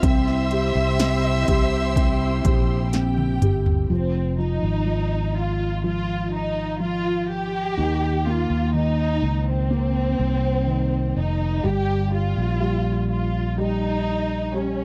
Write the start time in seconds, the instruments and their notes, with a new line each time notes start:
Already playing: string section C4
0.02 fretless electric bass C2, string section C3 E4 G4, felt piano C4, violin section C5 E5 C6 E6, kick, closed hi-hat
0.28 snare
0.51 felt piano G4, closed hi-hat
0.75 fretless electric bass C2
0.99 felt piano C4, snare, closed hi-hat
1.48 fretless electric bass C2, felt piano G4, kick, closed hi-hat
1.96 felt piano C4, kick, closed hi-hat
2.45 fretless electric bass A#1, felt piano G4, kick, closed hi-hat
2.93 felt piano C4, violin section G4 G5, snare, closed hi-hat
3.18 high tom
3.42 fretless electric bass G1, felt piano G4, closed hi-hat, mid tom
3.66 floor tom
3.90 fretless electric bass F1, felt piano F3, violin section C4
4.38 felt piano F3, violin section D#4
4.63 fretless electric bass G#1
4.86 felt piano F3
5.38 violin section F4
5.84 felt piano F3, violin section F4
6.33 violin section D#4
6.80 felt piano F3, violin section F4
7.31 violin section G4
7.77 fretless electric bass D#2, felt piano D#3
8.27 felt piano A#3, violin section F4
8.50 fretless electric bass D#2
8.74 felt piano D#3, violin section D#4
9.22 fretless electric bass C#2
9.49 violin section C4
9.71 felt piano A#3
10.19 fretless electric bass C2
10.67 felt piano D#3
11.16 fretless electric bass F1, violin section D#4
11.64 fretless electric bass G1, felt piano G3, violin section G4
12.12 felt piano G3, violin section F4
12.37 fretless electric bass A#1
12.60 felt piano G3
13.11 violin section F4
13.58 felt piano G3, violin section D#4
14.54 felt piano G3, violin section C#4